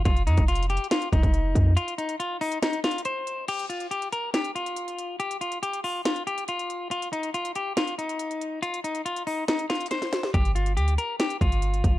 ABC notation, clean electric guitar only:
X:1
M:4/4
L:1/8
Q:1/4=140
K:Fmix
V:1 name="Clean electric guitar"
F E F G F E3 | F E F E E F c2 | G F G B G F3 | G F G F F G F2 |
F E F G F E3 | F E F E E F c2 | G F G B G F3 |]